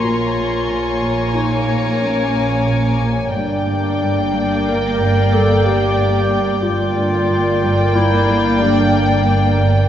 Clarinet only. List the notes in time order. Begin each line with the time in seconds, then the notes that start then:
0.03 F4
1.35 D#4
2.01 C#4
3.35 D4
4.70 A#4
5.33 A4
5.66 G4
6.63 F4
7.95 E4
8.61 D4